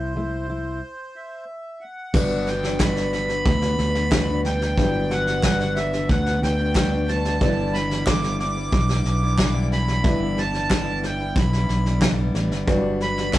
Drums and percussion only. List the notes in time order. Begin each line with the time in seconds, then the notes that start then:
2.14 kick, snare, crash
2.47 snare
2.64 snare
2.80 kick, snare, clap
2.96 snare
3.13 snare
3.29 snare
3.45 kick, snare
3.62 snare
3.79 snare
3.95 snare
4.12 kick, snare, clap
4.45 snare
4.62 snare
4.78 kick, snare
5.11 snare
5.27 snare
5.43 kick, snare, clap
5.60 snare
5.77 snare
5.93 snare
6.09 kick, snare
6.26 snare
6.43 snare
6.75 kick, snare, clap
7.09 snare
7.25 snare
7.41 kick, snare
7.74 snare
7.91 snare
8.07 kick, snare, clap
8.24 snare
8.40 snare
8.72 kick, snare
8.89 snare
9.05 snare
9.38 kick, snare, clap
9.72 snare
9.88 snare
10.04 kick, snare
10.38 snare
10.54 snare
10.70 kick, snare, clap
11.04 snare
11.36 kick, snare
11.53 snare
11.69 snare
11.86 snare
12.02 kick, snare, clap
12.35 snare
12.52 snare
12.68 kick, snare
13.01 snare
13.17 snare
13.33 kick, snare, clap